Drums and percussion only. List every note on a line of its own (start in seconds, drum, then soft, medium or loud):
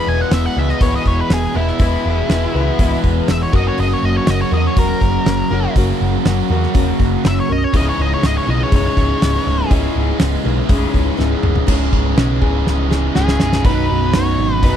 0.31 snare loud
0.31 open hi-hat medium
0.69 snare soft
0.81 kick loud
0.81 open hi-hat medium
1.06 kick medium
1.30 snare loud
1.30 open hi-hat medium
1.68 snare soft
1.79 kick loud
1.79 open hi-hat medium
2.30 snare loud
2.30 open hi-hat medium
2.79 kick loud
2.79 open hi-hat medium
3.04 kick medium
3.28 snare medium
3.28 open hi-hat medium
3.53 kick loud
3.78 open hi-hat medium
4.27 snare loud
4.27 open hi-hat medium
4.77 kick loud
4.77 open hi-hat medium
5.01 kick medium
5.26 snare loud
5.26 open hi-hat medium
5.76 kick loud
5.76 open hi-hat medium
6.25 snare loud
6.25 open hi-hat medium
6.63 snare soft
6.75 kick loud
6.75 open hi-hat medium
7.00 kick medium
7.25 snare loud
7.25 open hi-hat medium
7.74 kick loud
7.74 open hi-hat medium
8.23 snare medium
8.23 open hi-hat medium
8.72 kick loud
8.72 open hi-hat medium
8.97 kick medium
9.22 snare loud
9.22 open hi-hat medium
9.71 kick loud
9.71 open hi-hat medium
10.20 snare loud
10.20 open hi-hat medium
10.69 kick loud
10.69 open hi-hat medium
10.94 kick medium
11.20 snare medium
11.43 mid tom medium
11.56 floor tom medium
11.68 kick medium
11.68 crash loud
11.68 crash medium
11.93 kick medium
12.17 snare loud
12.17 crash medium
12.42 kick medium
12.67 snare medium
12.91 snare medium
13.15 snare medium
13.28 snare medium
13.40 snare loud
13.52 snare medium
13.64 kick loud
13.64 open hi-hat medium
14.13 snare loud
14.13 open hi-hat medium
14.63 kick loud
14.63 open hi-hat medium